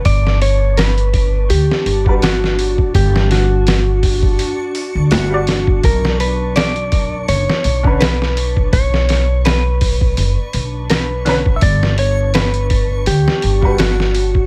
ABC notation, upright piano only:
X:1
M:4/4
L:1/16
Q:"Swing 16ths" 1/4=83
K:Glyd
V:1 name="Upright piano"
z8 z3 [G,FB] z4 | z12 z [G,Fd] z2 | z8 z3 [D,CB] z4 | z12 z2 [D,CB] z |
z8 z3 [G,FB] z4 |]